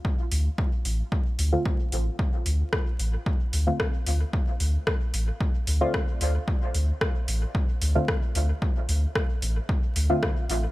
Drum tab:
HH |-o-o-o-o|-o-o-o-o|-o-o-o-o|-o-o-o-o|
SD |--------|--r---r-|--r---r-|--r---r-|
BD |o-o-o-o-|o-o-o-o-|o-o-o-o-|o-o-o-o-|

HH |-o-o-o-o|
SD |--r---r-|
BD |o-o-o-o-|